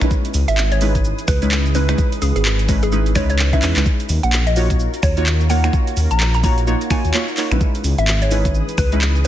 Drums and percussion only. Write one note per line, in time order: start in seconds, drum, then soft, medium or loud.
0.01 finger snap medium
0.01 closed hi-hat medium
0.01 shaker soft
0.11 kick loud
0.11 shaker soft
0.25 closed hi-hat medium
0.25 shaker soft
0.34 open hi-hat loud
0.34 shaker medium
0.48 closed hi-hat medium
0.48 shaker soft
0.58 clap loud
0.58 shaker soft
0.72 closed hi-hat medium
0.72 shaker soft
0.81 open hi-hat loud
0.81 shaker medium
0.95 kick medium
0.95 closed hi-hat medium
0.95 shaker soft
1.05 shaker soft
1.19 closed hi-hat soft
1.19 shaker soft
1.28 finger snap medium
1.28 kick loud
1.28 open hi-hat loud
1.28 shaker medium
1.42 closed hi-hat medium
1.42 shaker soft
1.51 clap loud
1.51 shaker soft
1.65 shaker soft
1.75 open hi-hat loud
1.75 shaker medium
1.89 finger snap medium
1.89 closed hi-hat medium
1.89 shaker soft
1.98 kick loud
1.98 shaker soft
2.12 closed hi-hat medium
2.12 shaker soft
2.22 open hi-hat loud
2.22 shaker medium
2.36 closed hi-hat medium
2.36 shaker soft
2.45 clap loud
2.45 shaker soft
2.59 closed hi-hat medium
2.59 shaker soft
2.69 kick loud
2.69 open hi-hat loud
2.69 shaker medium
2.83 closed hi-hat medium
2.83 shaker soft
2.92 shaker soft
3.06 closed hi-hat soft
3.06 shaker soft
3.15 finger snap medium
3.15 kick loud
3.15 open hi-hat loud
3.15 shaker medium
3.30 closed hi-hat medium
3.30 shaker soft
3.39 clap loud
3.39 shaker soft
3.53 kick medium
3.53 closed hi-hat soft
3.53 shaker soft
3.62 clap medium
3.62 open hi-hat loud
3.62 shaker medium
3.76 clap loud
3.76 closed hi-hat medium
3.76 shaker soft
3.86 kick loud
3.86 shaker soft
4.00 closed hi-hat medium
4.00 shaker soft
4.09 open hi-hat loud
4.09 shaker medium
4.23 closed hi-hat medium
4.23 shaker soft
4.33 clap loud
4.33 shaker soft
4.47 closed hi-hat medium
4.47 shaker soft
4.56 open hi-hat loud
4.56 shaker medium
4.70 kick medium
4.70 closed hi-hat medium
4.70 shaker soft
4.80 shaker soft
4.94 closed hi-hat soft
4.94 shaker soft
5.03 finger snap medium
5.03 kick loud
5.03 open hi-hat loud
5.03 shaker medium
5.17 closed hi-hat medium
5.17 shaker soft
5.26 clap loud
5.26 shaker soft
5.41 shaker soft
5.50 open hi-hat loud
5.50 shaker medium
5.64 finger snap medium
5.64 closed hi-hat medium
5.64 shaker soft
5.73 kick loud
5.73 shaker soft
5.87 closed hi-hat medium
5.87 shaker soft
5.97 open hi-hat loud
5.97 shaker medium
6.11 closed hi-hat medium
6.11 shaker soft
6.20 clap loud
6.20 shaker soft
6.34 closed hi-hat medium
6.34 shaker soft
6.44 kick loud
6.44 open hi-hat loud
6.44 shaker medium
6.58 closed hi-hat medium
6.58 shaker soft
6.67 shaker soft
6.81 closed hi-hat soft
6.81 shaker soft
6.90 finger snap medium
6.90 kick loud
6.90 open hi-hat loud
6.90 shaker medium
7.05 closed hi-hat medium
7.05 shaker soft
7.14 clap loud
7.14 shaker soft
7.28 shaker soft
7.37 clap medium
7.37 open hi-hat loud
7.37 shaker medium
7.52 finger snap medium
7.52 closed hi-hat medium
7.52 shaker soft
7.61 kick loud
7.61 shaker soft
7.75 closed hi-hat medium
7.75 shaker soft
7.84 open hi-hat loud
7.84 shaker medium
7.98 closed hi-hat medium
7.98 shaker soft
8.08 clap loud
8.08 shaker soft
8.22 closed hi-hat medium
8.22 shaker soft
8.31 open hi-hat loud
8.31 shaker medium
8.45 kick medium
8.45 closed hi-hat medium
8.45 shaker soft
8.55 shaker soft
8.69 closed hi-hat soft
8.69 shaker soft
8.78 finger snap medium
8.78 kick loud
8.78 open hi-hat loud
8.78 shaker medium
8.92 closed hi-hat medium
8.92 shaker soft
9.01 clap loud
9.01 shaker soft
9.16 shaker soft